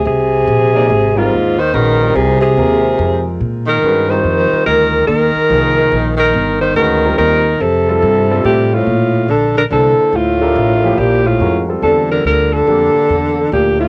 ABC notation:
X:1
M:3/4
L:1/8
Q:"Swing" 1/4=143
K:Ablyd
V:1 name="Alto saxophone"
A4- A F- | F c B2 A A- | A4 z B- | B c3 B2 |
B4- B B- | B c B2 B2 | =A4 G F- | [K:Bblyd] F2 A B A2 |
F4 G F- | F z A B B A- | A4 G F |]
V:2 name="Grand piano"
z3 [B,EAd] z [G,CFB] | z2 [A,_D_G_c] [=G,=CFB]2 z | [A,CFB]4- [A,CFB] z | [A,_D_G_c] [=G,=CFB]4 z |
z2 [F,B,EA]3 z | z2 [A,_D_G_c] [=G,=CFB]2 z | z [G,CF=A]2 [G,CFA]3 | [K:Bblyd] z4 [B,EAc]2- |
[B,EAc] [DGAB]2 [F,B,EG]3 | [_A,_D_GB] [=G,CF=A]4 z | [B,DGA]4- [B,DGA] z |]
V:3 name="Tenor saxophone" clef=bass
C,4- C, A,,- | A,, E, E,2 C, C,- | C,4 z E,- | E, E,3 E,2 |
E,4- E, E,- | E, E, E,2 E,2 | C,4 C, =A,,- | [K:Bblyd] A,,2 D, D, D,2 |
A,,4 B,, A,,- | A,, z D, D, D, D,- | D,4 B,, A,, |]
V:4 name="Upright bass" clef=bass
C,,2 B,,,2 A,,,2 | E,,2 B,,,2 C,,2 | E,,2 F,,2 B,,2 | G,,2 F,, z D,,2 |
E,, z C,,2 B,,,2 | G,,,2 D,,2 E,,2 | F,,2 G,,2 =A,,2 | [K:Bblyd] B,,2 B,,,2 C,, z |
D,,2 A,,,2 B,,,2 | F,,2 E,,2 D,,2 | F,, z E,,2 D,,2 |]